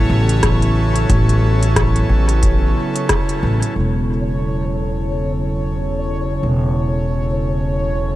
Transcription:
0, 0, Header, 1, 5, 480
1, 0, Start_track
1, 0, Tempo, 666667
1, 791, Time_signature, 4, 2, 24, 8
1, 5872, End_track
2, 0, Start_track
2, 0, Title_t, "Synth texture"
2, 0, Program_c, 0, 99
2, 0, Note_on_c, 0, 73, 84
2, 2697, Note_off_c, 0, 73, 0
2, 2706, Note_on_c, 0, 73, 76
2, 5872, Note_off_c, 0, 73, 0
2, 5872, End_track
3, 0, Start_track
3, 0, Title_t, "Analog synth pad"
3, 0, Program_c, 1, 89
3, 0, Note_on_c, 1, 49, 99
3, 0, Note_on_c, 1, 54, 79
3, 0, Note_on_c, 1, 59, 77
3, 0, Note_on_c, 1, 64, 75
3, 0, Note_on_c, 1, 69, 92
3, 5872, Note_off_c, 1, 49, 0
3, 5872, Note_off_c, 1, 54, 0
3, 5872, Note_off_c, 1, 59, 0
3, 5872, Note_off_c, 1, 64, 0
3, 5872, Note_off_c, 1, 69, 0
3, 5872, End_track
4, 0, Start_track
4, 0, Title_t, "Upright bass"
4, 0, Program_c, 2, 32
4, 69, Note_on_c, 2, 33, 97
4, 771, Note_off_c, 2, 33, 0
4, 789, Note_on_c, 2, 33, 97
4, 1491, Note_off_c, 2, 33, 0
4, 1506, Note_on_c, 2, 33, 82
4, 1970, Note_off_c, 2, 33, 0
4, 2467, Note_on_c, 2, 33, 84
4, 2593, Note_off_c, 2, 33, 0
4, 2707, Note_on_c, 2, 28, 73
4, 4609, Note_off_c, 2, 28, 0
4, 4630, Note_on_c, 2, 28, 73
4, 5872, Note_off_c, 2, 28, 0
4, 5872, End_track
5, 0, Start_track
5, 0, Title_t, "Drums"
5, 210, Note_on_c, 9, 42, 41
5, 282, Note_off_c, 9, 42, 0
5, 309, Note_on_c, 9, 37, 74
5, 309, Note_on_c, 9, 42, 54
5, 310, Note_on_c, 9, 36, 100
5, 381, Note_off_c, 9, 37, 0
5, 381, Note_off_c, 9, 42, 0
5, 382, Note_off_c, 9, 36, 0
5, 449, Note_on_c, 9, 42, 29
5, 521, Note_off_c, 9, 42, 0
5, 688, Note_on_c, 9, 42, 41
5, 760, Note_off_c, 9, 42, 0
5, 789, Note_on_c, 9, 36, 104
5, 789, Note_on_c, 9, 42, 53
5, 861, Note_off_c, 9, 36, 0
5, 861, Note_off_c, 9, 42, 0
5, 931, Note_on_c, 9, 42, 33
5, 1003, Note_off_c, 9, 42, 0
5, 1171, Note_on_c, 9, 42, 43
5, 1243, Note_off_c, 9, 42, 0
5, 1269, Note_on_c, 9, 36, 101
5, 1270, Note_on_c, 9, 37, 78
5, 1270, Note_on_c, 9, 42, 53
5, 1341, Note_off_c, 9, 36, 0
5, 1342, Note_off_c, 9, 37, 0
5, 1342, Note_off_c, 9, 42, 0
5, 1410, Note_on_c, 9, 42, 31
5, 1482, Note_off_c, 9, 42, 0
5, 1647, Note_on_c, 9, 42, 44
5, 1719, Note_off_c, 9, 42, 0
5, 1748, Note_on_c, 9, 42, 53
5, 1749, Note_on_c, 9, 36, 99
5, 1820, Note_off_c, 9, 42, 0
5, 1821, Note_off_c, 9, 36, 0
5, 2128, Note_on_c, 9, 42, 45
5, 2200, Note_off_c, 9, 42, 0
5, 2226, Note_on_c, 9, 37, 77
5, 2226, Note_on_c, 9, 42, 52
5, 2229, Note_on_c, 9, 36, 99
5, 2298, Note_off_c, 9, 37, 0
5, 2298, Note_off_c, 9, 42, 0
5, 2301, Note_off_c, 9, 36, 0
5, 2369, Note_on_c, 9, 42, 30
5, 2441, Note_off_c, 9, 42, 0
5, 2609, Note_on_c, 9, 42, 45
5, 2681, Note_off_c, 9, 42, 0
5, 5872, End_track
0, 0, End_of_file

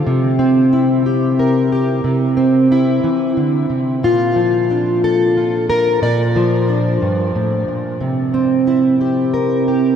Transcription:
0, 0, Header, 1, 2, 480
1, 0, Start_track
1, 0, Tempo, 662983
1, 36, Time_signature, 6, 3, 24, 8
1, 7210, End_track
2, 0, Start_track
2, 0, Title_t, "Steel-string acoustic guitar"
2, 0, Program_c, 0, 25
2, 48, Note_on_c, 0, 48, 72
2, 282, Note_on_c, 0, 60, 63
2, 529, Note_on_c, 0, 64, 57
2, 768, Note_on_c, 0, 67, 59
2, 1009, Note_on_c, 0, 70, 58
2, 1239, Note_off_c, 0, 67, 0
2, 1248, Note_on_c, 0, 67, 56
2, 1447, Note_off_c, 0, 60, 0
2, 1451, Note_off_c, 0, 64, 0
2, 1451, Note_off_c, 0, 67, 0
2, 1469, Note_off_c, 0, 48, 0
2, 1477, Note_on_c, 0, 48, 72
2, 1499, Note_off_c, 0, 70, 0
2, 1715, Note_on_c, 0, 60, 61
2, 1967, Note_on_c, 0, 64, 79
2, 2194, Note_off_c, 0, 48, 0
2, 2199, Note_on_c, 0, 52, 58
2, 2436, Note_off_c, 0, 52, 0
2, 2439, Note_on_c, 0, 50, 57
2, 2674, Note_off_c, 0, 50, 0
2, 2677, Note_on_c, 0, 48, 61
2, 2887, Note_off_c, 0, 60, 0
2, 2916, Note_off_c, 0, 48, 0
2, 2920, Note_on_c, 0, 46, 68
2, 2923, Note_off_c, 0, 64, 0
2, 2927, Note_on_c, 0, 65, 80
2, 3156, Note_on_c, 0, 53, 58
2, 3405, Note_on_c, 0, 62, 43
2, 3645, Note_off_c, 0, 65, 0
2, 3650, Note_on_c, 0, 69, 93
2, 3889, Note_on_c, 0, 65, 42
2, 4121, Note_off_c, 0, 69, 0
2, 4124, Note_on_c, 0, 70, 95
2, 4334, Note_off_c, 0, 46, 0
2, 4335, Note_off_c, 0, 62, 0
2, 4336, Note_off_c, 0, 65, 0
2, 4358, Note_on_c, 0, 46, 74
2, 4361, Note_off_c, 0, 70, 0
2, 4364, Note_on_c, 0, 74, 95
2, 4595, Note_off_c, 0, 53, 0
2, 4604, Note_on_c, 0, 53, 65
2, 4843, Note_on_c, 0, 62, 43
2, 5078, Note_off_c, 0, 46, 0
2, 5083, Note_on_c, 0, 43, 59
2, 5321, Note_off_c, 0, 43, 0
2, 5324, Note_on_c, 0, 45, 63
2, 5559, Note_off_c, 0, 45, 0
2, 5561, Note_off_c, 0, 74, 0
2, 5562, Note_on_c, 0, 46, 61
2, 5772, Note_off_c, 0, 62, 0
2, 5796, Note_on_c, 0, 48, 75
2, 5800, Note_off_c, 0, 46, 0
2, 5801, Note_off_c, 0, 53, 0
2, 6037, Note_on_c, 0, 60, 64
2, 6280, Note_on_c, 0, 64, 58
2, 6522, Note_on_c, 0, 67, 58
2, 6760, Note_on_c, 0, 70, 56
2, 6999, Note_off_c, 0, 67, 0
2, 7008, Note_on_c, 0, 67, 58
2, 7210, Note_off_c, 0, 48, 0
2, 7210, Note_off_c, 0, 60, 0
2, 7210, Note_off_c, 0, 64, 0
2, 7210, Note_off_c, 0, 67, 0
2, 7210, Note_off_c, 0, 70, 0
2, 7210, End_track
0, 0, End_of_file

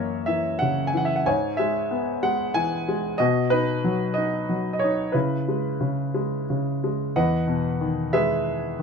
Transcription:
0, 0, Header, 1, 2, 480
1, 0, Start_track
1, 0, Tempo, 649351
1, 931, Time_signature, 6, 3, 24, 8
1, 3799, Tempo, 663717
1, 6464, End_track
2, 0, Start_track
2, 0, Title_t, "Grand piano"
2, 0, Program_c, 0, 0
2, 0, Control_c, 0, 64, 127
2, 0, Note_on_c, 0, 42, 39
2, 0, Note_on_c, 0, 52, 34
2, 0, Note_on_c, 0, 58, 34
2, 0, Note_on_c, 0, 70, 41
2, 0, Note_on_c, 0, 73, 51
2, 0, Note_on_c, 0, 75, 43
2, 0, Note_on_c, 0, 76, 52
2, 175, Note_off_c, 0, 70, 0
2, 192, Note_off_c, 0, 52, 0
2, 193, Note_off_c, 0, 76, 0
2, 193, Note_on_c, 0, 76, 58
2, 204, Note_on_c, 0, 52, 36
2, 214, Note_off_c, 0, 73, 0
2, 434, Note_on_c, 0, 78, 65
2, 450, Note_off_c, 0, 76, 0
2, 457, Note_on_c, 0, 49, 33
2, 645, Note_on_c, 0, 80, 57
2, 669, Note_off_c, 0, 78, 0
2, 682, Note_off_c, 0, 52, 0
2, 694, Note_on_c, 0, 52, 38
2, 718, Note_on_c, 0, 78, 56
2, 723, Note_off_c, 0, 80, 0
2, 777, Note_on_c, 0, 76, 55
2, 792, Note_off_c, 0, 78, 0
2, 854, Note_off_c, 0, 76, 0
2, 856, Note_on_c, 0, 78, 54
2, 904, Note_off_c, 0, 42, 0
2, 905, Note_off_c, 0, 58, 0
2, 922, Note_off_c, 0, 49, 0
2, 926, Note_off_c, 0, 52, 0
2, 926, Note_off_c, 0, 78, 0
2, 932, Note_on_c, 0, 80, 60
2, 934, Note_on_c, 0, 73, 46
2, 935, Note_on_c, 0, 44, 46
2, 940, Control_c, 0, 64, 0
2, 942, Note_off_c, 0, 75, 0
2, 1088, Control_c, 0, 64, 127
2, 1161, Note_on_c, 0, 76, 62
2, 1177, Note_on_c, 0, 56, 40
2, 1179, Note_off_c, 0, 80, 0
2, 1411, Note_on_c, 0, 59, 39
2, 1622, Note_off_c, 0, 73, 0
2, 1635, Note_off_c, 0, 56, 0
2, 1647, Note_on_c, 0, 56, 40
2, 1647, Note_on_c, 0, 78, 67
2, 1659, Note_off_c, 0, 76, 0
2, 1881, Note_on_c, 0, 80, 79
2, 1885, Note_on_c, 0, 52, 38
2, 1894, Note_off_c, 0, 78, 0
2, 2121, Note_off_c, 0, 56, 0
2, 2132, Note_on_c, 0, 56, 43
2, 2333, Note_off_c, 0, 59, 0
2, 2334, Note_off_c, 0, 44, 0
2, 2345, Note_off_c, 0, 52, 0
2, 2350, Note_on_c, 0, 75, 67
2, 2358, Note_off_c, 0, 56, 0
2, 2362, Note_on_c, 0, 66, 53
2, 2363, Note_on_c, 0, 47, 55
2, 2370, Control_c, 0, 64, 0
2, 2372, Note_off_c, 0, 80, 0
2, 2511, Control_c, 0, 64, 127
2, 2589, Note_on_c, 0, 71, 77
2, 2600, Note_off_c, 0, 75, 0
2, 2602, Note_on_c, 0, 63, 40
2, 2841, Note_on_c, 0, 54, 46
2, 3048, Note_off_c, 0, 66, 0
2, 3059, Note_on_c, 0, 75, 60
2, 3070, Note_off_c, 0, 63, 0
2, 3081, Note_on_c, 0, 63, 41
2, 3087, Note_off_c, 0, 71, 0
2, 3311, Note_off_c, 0, 54, 0
2, 3322, Note_on_c, 0, 54, 35
2, 3487, Note_off_c, 0, 75, 0
2, 3499, Note_on_c, 0, 75, 47
2, 3543, Note_on_c, 0, 73, 57
2, 3555, Note_off_c, 0, 75, 0
2, 3564, Note_off_c, 0, 63, 0
2, 3575, Note_on_c, 0, 63, 42
2, 3771, Note_off_c, 0, 47, 0
2, 3786, Note_on_c, 0, 71, 50
2, 3787, Note_off_c, 0, 54, 0
2, 3799, Note_off_c, 0, 73, 0
2, 3799, Note_on_c, 0, 64, 35
2, 3801, Note_off_c, 0, 63, 0
2, 3802, Note_on_c, 0, 49, 46
2, 3809, Control_c, 0, 64, 0
2, 3936, Control_c, 0, 64, 127
2, 4048, Note_on_c, 0, 56, 36
2, 4270, Note_off_c, 0, 49, 0
2, 4281, Note_on_c, 0, 49, 37
2, 4515, Note_off_c, 0, 56, 0
2, 4526, Note_on_c, 0, 56, 34
2, 4740, Note_off_c, 0, 71, 0
2, 4746, Note_off_c, 0, 64, 0
2, 4771, Note_off_c, 0, 49, 0
2, 4782, Note_on_c, 0, 49, 29
2, 5017, Note_off_c, 0, 56, 0
2, 5028, Note_on_c, 0, 56, 34
2, 5247, Note_off_c, 0, 49, 0
2, 5255, Note_off_c, 0, 56, 0
2, 5259, Note_on_c, 0, 75, 45
2, 5260, Note_on_c, 0, 78, 59
2, 5261, Note_on_c, 0, 71, 46
2, 5263, Note_on_c, 0, 40, 48
2, 5268, Control_c, 0, 64, 0
2, 5382, Control_c, 0, 64, 127
2, 5488, Note_on_c, 0, 47, 38
2, 5727, Note_on_c, 0, 51, 44
2, 5940, Note_off_c, 0, 75, 0
2, 5941, Note_off_c, 0, 71, 0
2, 5962, Note_on_c, 0, 76, 67
2, 5965, Note_on_c, 0, 68, 49
2, 5965, Note_on_c, 0, 71, 44
2, 5966, Note_on_c, 0, 56, 41
2, 5991, Note_off_c, 0, 78, 0
2, 6410, Note_off_c, 0, 47, 0
2, 6427, Note_off_c, 0, 51, 0
2, 6438, Note_on_c, 0, 51, 42
2, 6464, Note_off_c, 0, 40, 0
2, 6464, Note_off_c, 0, 51, 0
2, 6464, Note_off_c, 0, 56, 0
2, 6464, Note_off_c, 0, 68, 0
2, 6464, Note_off_c, 0, 71, 0
2, 6464, Note_off_c, 0, 76, 0
2, 6464, End_track
0, 0, End_of_file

